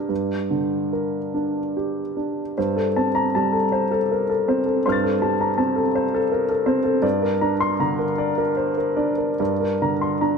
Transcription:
Already playing: D4 G4 A#4
0.09 G2
0.51 D3
0.93 A#4
1.34 D4
1.77 G4
2.17 D4
2.58 G2 C5
2.76 A4
2.96 C4 A5
3.15 A#5
3.35 G3 A5
3.53 A4
3.72 C5
3.92 A4
4.11 A#4
4.29 A4
4.48 C4 C5
4.66 A4
4.86 G2 C5 C6 F6
4.92 A6
5.04 A4
5.22 G3 A5
5.41 A#5
5.58 C4 A5
5.76 A4
5.95 C5
6.14 A4
6.32 A#4
6.49 A4
6.66 C4 C5
6.84 A4
7.02 G2 D5
7.22 A#4
7.41 D4 A#5
7.61 C6
7.80 D3 A#5
7.99 A#4
8.18 D5
8.38 A#4
8.57 C5
8.78 A#4
8.97 D4 D5
9.18 A#4
9.40 G2 D5
9.60 A#4
9.82 D3 A#5
10.01 C6
10.21 D4 A#5

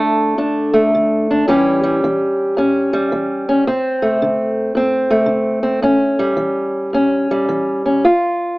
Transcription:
Already playing: D3 A3 D4
0.38 F2 D4
0.74 A3
0.95 D3
1.31 D4
1.48 A2 E3 G3 C#4 G4
1.84 G3
2.04 E3
2.57 E2 C#4
2.93 G3
3.12 E3
3.49 C#4
3.67 D2 C4
4.02 A3
4.22 D3
4.75 A2 C4
5.10 A3
5.26 D3
5.63 C4
5.82 A2 C#4
6.19 G3
6.37 E3
6.93 E2 C#4
7.31 G3
7.49 E3
7.86 C#4
8.04 D2 F4

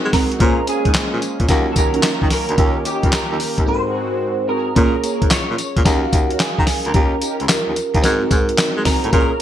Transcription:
Already playing: G#3 C4 D#4 F#4 A#4
0.05 G#3
0.12 C4 F#4 G#4 A#4, kick, snare, open hi-hat, tambourine
0.32 closed hi-hat
0.39 A#2 G#3 A#3 C#4 F4 G#4 A#4 C5, kick, closed hi-hat
0.67 A#3 C#4 G#4, closed hi-hat, tambourine
0.85 G#2, kick, closed hi-hat
0.94 A#2, snare, clap, closed hi-hat, tambourine
1.13 A#2
1.22 closed hi-hat, tambourine
1.40 A#2, kick, closed hi-hat
1.48 D#2 D#3 F#3 C#4 F4 F#4 A#4, kick, snare, closed hi-hat, tambourine
1.72 A4, kick, tambourine
1.76 D#2 A#4, closed hi-hat
1.94 C#4 D#4 F#4, closed hi-hat
2.03 snare, clap, closed hi-hat, tambourine
2.22 D#3, kick
2.30 A#4, snare, open hi-hat, tambourine
2.49 D2, closed hi-hat
2.56 D#2 C#4 D#4 F4 G4 A#4, kick, closed hi-hat
2.84 C#4 D#4 G4, closed hi-hat, tambourine
3.03 C#2, kick, closed hi-hat
3.12 D#2 A#4, snare, clap, closed hi-hat, tambourine
3.31 D#2
3.40 open hi-hat, tambourine
3.58 D#2, kick, closed hi-hat
3.65 G#2 G#3 C4 D#4 F#4 A4 C5
3.74 A#4
3.85 C4 F#4 G#4
4.48 C4 F#4 G#4 A#4
4.75 A#2 A#3 C#4 F4 G#4 A#4 C#5, kick, closed hi-hat
5.03 A#3 C#4 G#4, closed hi-hat, tambourine
5.22 G#2, kick, closed hi-hat
5.31 A#2 C#5, snare, clap, closed hi-hat, tambourine
5.50 A#2
5.58 closed hi-hat, tambourine
5.77 A#2, kick, closed hi-hat
5.84 D#2 C#4 F#4 A#4 F5, kick, snare, closed hi-hat, tambourine
6.13 D#2, kick, closed hi-hat, tambourine
6.30 C#4 D#4 F#4, closed hi-hat
6.40 G#4, snare, clap, closed hi-hat, tambourine
6.58 D#3, kick
6.67 snare, open hi-hat, tambourine
6.85 D2 A#4, closed hi-hat
6.94 D#2 C#4 D#4 F4 G4 A#4, kick, closed hi-hat
7.21 C#4 D#4 G4, closed hi-hat, tambourine
7.40 C#2, closed hi-hat
7.49 D#2, snare, clap, closed hi-hat, tambourine
7.68 D#2
7.76 closed hi-hat, tambourine
7.94 D#2, kick, closed hi-hat
8.02 G#2 C4 D#4 F#4 A#4, snare, closed hi-hat, tambourine
8.21 C4 F#4 G#4
8.31 G#2, kick, closed hi-hat, tambourine
8.49 closed hi-hat
8.58 snare, clap, closed hi-hat, tambourine
8.77 G#3
8.85 C4 F#4 G#4 A#4, kick, snare, open hi-hat, tambourine
9.04 A2, closed hi-hat
9.11 A#2 C#4 F4 G#4 A#4, kick, closed hi-hat
9.20 C#5

